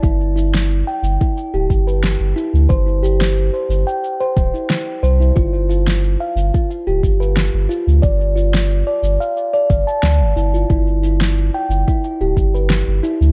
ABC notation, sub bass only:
X:1
M:4/4
L:1/16
Q:"Swing 16ths" 1/4=90
K:Ddor
V:1 name="Sub bass" clef=bass
G,,,4- G,,, z G,,, z2 D,,, G,,,3 G,,, z D,, | G,,,4- G,,, z G,,, z3 D,,, z3 C,,2 | G,,,4- G,,, z G,,, z2 D,,, G,,,3 G,,, z D,, | G,,,4- G,,, z G,,, z3 G,,, z D,, G,,, G,,,2 |
G,,,4- G,,, z G,,, z2 D,,, G,,,3 G,,, z D,, |]